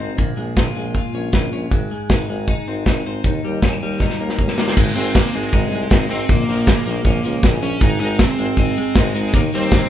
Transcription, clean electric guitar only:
0.00 0.17 G#2 medium
0.00 0.37 G#3 medium
0.00 0.23 C4 medium
0.00 0.23 D#4 medium
0.17 1.71 A#2 medium
0.37 0.76 G#3 medium
0.57 0.94 F4 medium
0.76 1.75 G#3 medium
0.95 1.33 F4 medium
1.15 1.52 C#4 soft
1.34 1.76 F4 medium
1.53 1.76 C#4 medium
1.72 3.24 G#2 medium
1.91 2.29 G#3 medium
2.10 2.48 D#4 medium
2.30 3.29 G#3 medium
2.49 2.87 D#4 medium
2.68 3.05 C4 medium
2.87 3.63 D#4 medium
3.06 3.29 C4 medium
3.26 4.78 D#3 medium
3.44 3.82 G3 medium
3.63 3.73 C#4 medium
3.73 4.01 D#4 medium
3.83 4.81 G3 medium
4.02 4.39 D#4 medium
4.21 4.58 A#3 medium
4.40 4.49 C#4 medium
4.49 4.81 D#4 medium
4.59 4.81 A#3 medium
4.78 6.29 G#2 medium
4.97 5.35 G#3 medium
5.16 5.26 A#3 medium
5.26 5.91 C4 medium
5.35 5.73 G#3 medium
5.54 6.11 D#4 medium
5.73 6.49 G#3 medium
5.93 6.34 C4 medium
6.12 6.34 D#4 medium
6.30 7.82 A#2 medium
6.49 6.86 F3 medium
6.68 7.42 G#3 medium
6.87 7.23 F3 medium
7.06 7.62 C#4 medium
7.25 7.85 F3 medium
7.44 7.85 G#3 medium
7.63 7.85 C#4 medium
7.82 9.34 G#2 medium
8.01 8.38 G#3 medium
8.19 8.29 A#3 medium
8.29 8.95 C4 medium
8.39 8.77 G#3 medium
8.59 9.15 D#4 medium
8.78 9.38 G#3 medium
8.96 9.38 C4 medium
9.16 9.89 D#4 medium
9.35 9.89 D#3 medium
9.54 9.89 G3 medium
9.73 9.89 A#3 medium

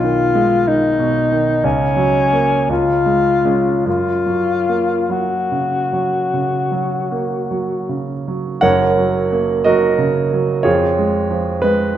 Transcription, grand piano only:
0.00 1.61 B1 soft
0.00 0.55 D#3 soft
0.35 0.87 G#3 soft
0.68 1.19 D#3 soft
0.99 1.51 B2 soft
1.32 1.65 D#3 soft
1.63 2.66 C#2 soft
1.96 2.54 F#3 soft
2.33 2.66 A#3 soft
2.69 3.82 C#2 soft
3.06 3.44 G#3 soft
3.45 3.82 G#3 soft
3.45 3.82 C#4 soft
3.86 6.29 F#2 soft
4.26 4.94 F#3 soft
4.69 5.36 A#3 soft
5.10 5.76 F#3 soft
5.52 6.17 C#3 soft
5.93 6.57 F#3 soft
6.34 6.97 C#3 soft
6.72 7.35 F#3 soft
7.12 7.74 A#3 soft
7.51 8.13 F#3 soft
7.89 8.50 C#3 soft
8.28 8.63 F#3 soft
8.61 10.61 F#1 soft
8.61 10.61 F#2 soft
8.61 9.61 A#4 soft
8.61 9.61 C#5 soft
8.61 9.64 F#5 medium
8.97 9.52 F#3 soft
9.32 9.86 A#3 soft
9.64 10.20 F#3 soft
9.64 10.62 F#4 medium
9.64 10.62 A#4 medium
9.64 10.65 D#5 medium
9.98 10.52 C#3 soft
10.33 10.66 F#3 soft
10.63 11.97 F2 soft
10.63 11.58 F4 soft
10.63 11.58 G#4 soft
10.63 11.61 C#5 medium
10.99 11.50 G#3 soft
11.31 11.82 F3 soft
11.62 11.97 G#3 soft
11.62 11.97 B4 medium

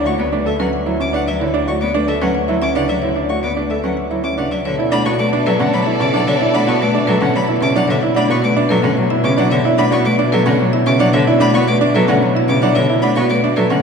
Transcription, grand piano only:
0.06 0.23 F#4 medium
0.32 0.50 D4 medium
0.46 0.63 A4 medium
0.59 0.77 C#4 medium
0.86 1.04 E4 medium
1.00 1.18 C#4 medium
1.13 1.31 D4 medium
1.40 1.58 E4 medium
1.54 1.72 D4 loud
1.67 1.85 F#4 medium
1.94 2.12 D4 loud
2.08 2.26 A4 medium
2.22 2.39 C#4 medium
2.49 2.66 E4 medium
2.62 2.80 C#4 medium
2.76 2.93 D4 loud
3.03 3.20 E4 medium
3.16 3.34 D4 medium
3.30 3.47 F#4 medium
3.56 3.74 D4 medium
3.70 3.88 A4 medium
3.84 4.01 C#4 medium
4.11 4.28 E4 medium
4.24 4.42 C#4 medium
4.38 4.55 D4 medium
4.78 4.96 E4 medium
4.92 5.09 D4 loud
5.06 5.23 F#4 medium
5.33 5.50 D4 loud
5.46 5.64 A4 medium
5.60 5.77 C#4 medium
5.86 6.04 E4 medium
6.00 6.18 C#4 medium
6.13 6.31 D4 loud
6.41 6.58 E4 medium
6.54 6.72 D4 medium
6.68 6.85 F#4 medium
6.95 7.12 D4 loud
7.08 7.26 A4 medium
7.22 7.39 C#4 medium
7.49 7.66 E4 medium
7.62 7.80 C#4 medium
7.76 7.93 D4 loud
8.03 8.20 E4 medium
8.16 8.34 D4 loud
8.30 8.47 F#4 medium
8.56 8.74 D4 loud
8.70 8.88 A4 medium
8.84 9.01 C#4 medium
9.11 9.28 E4 medium
9.24 9.42 C#4 medium
9.38 9.55 D4 loud
9.65 9.83 E4 loud
9.78 9.96 D4 loud
9.92 10.09 F#4 medium
10.19 10.36 D4 loud
10.33 10.50 A4 medium
10.46 10.63 C#4 medium
10.73 10.91 E4 medium
10.87 11.04 C#4 medium
11.00 11.18 D4 loud
11.27 11.45 E4 loud
11.40 11.58 D4 loud
11.54 11.72 F#4 medium
11.81 11.99 D4 loud
11.94 12.12 A4 medium
12.08 12.26 C#4 medium
12.35 12.53 E4 medium
12.49 12.66 C#4 medium
12.63 12.80 D4 loud
12.90 13.07 E4 medium
13.03 13.20 D4 loud
13.17 13.34 F#4 medium
13.44 13.61 D4 loud
13.57 13.74 A4 medium
13.70 13.82 C#4 medium

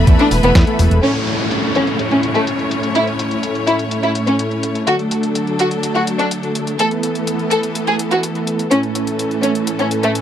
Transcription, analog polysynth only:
0.00 0.41 E3 medium
0.00 0.41 A3 medium
0.00 0.41 B3 medium
0.00 0.41 E4 medium
0.00 0.41 A4 loud
0.43 0.62 E3 medium
0.43 0.62 A3 medium
0.43 0.62 B3 medium
0.43 0.62 E4 medium
0.43 0.62 A4 medium
0.67 1.00 E3 medium
0.67 1.00 A3 medium
0.67 1.00 B3 medium
0.67 1.00 E4 medium
0.67 1.00 A4 loud
1.03 4.84 A2 medium
1.03 4.84 A3 medium
1.03 4.84 C#4 medium
1.03 4.84 E4 medium
1.03 4.84 A4 medium
4.87 6.76 D3 medium
4.87 6.76 A3 medium
4.87 6.76 D4 medium
4.87 6.76 F#4 medium
4.87 6.76 A4 medium
6.79 8.68 E3 medium
6.79 8.68 A3 medium
6.79 8.68 B3 medium
6.79 8.68 E4 medium
6.79 8.68 A4 medium
8.71 10.21 A2 medium
8.71 10.21 A3 medium
8.71 10.21 C#4 medium
8.71 10.21 E4 medium
8.71 10.21 A4 medium

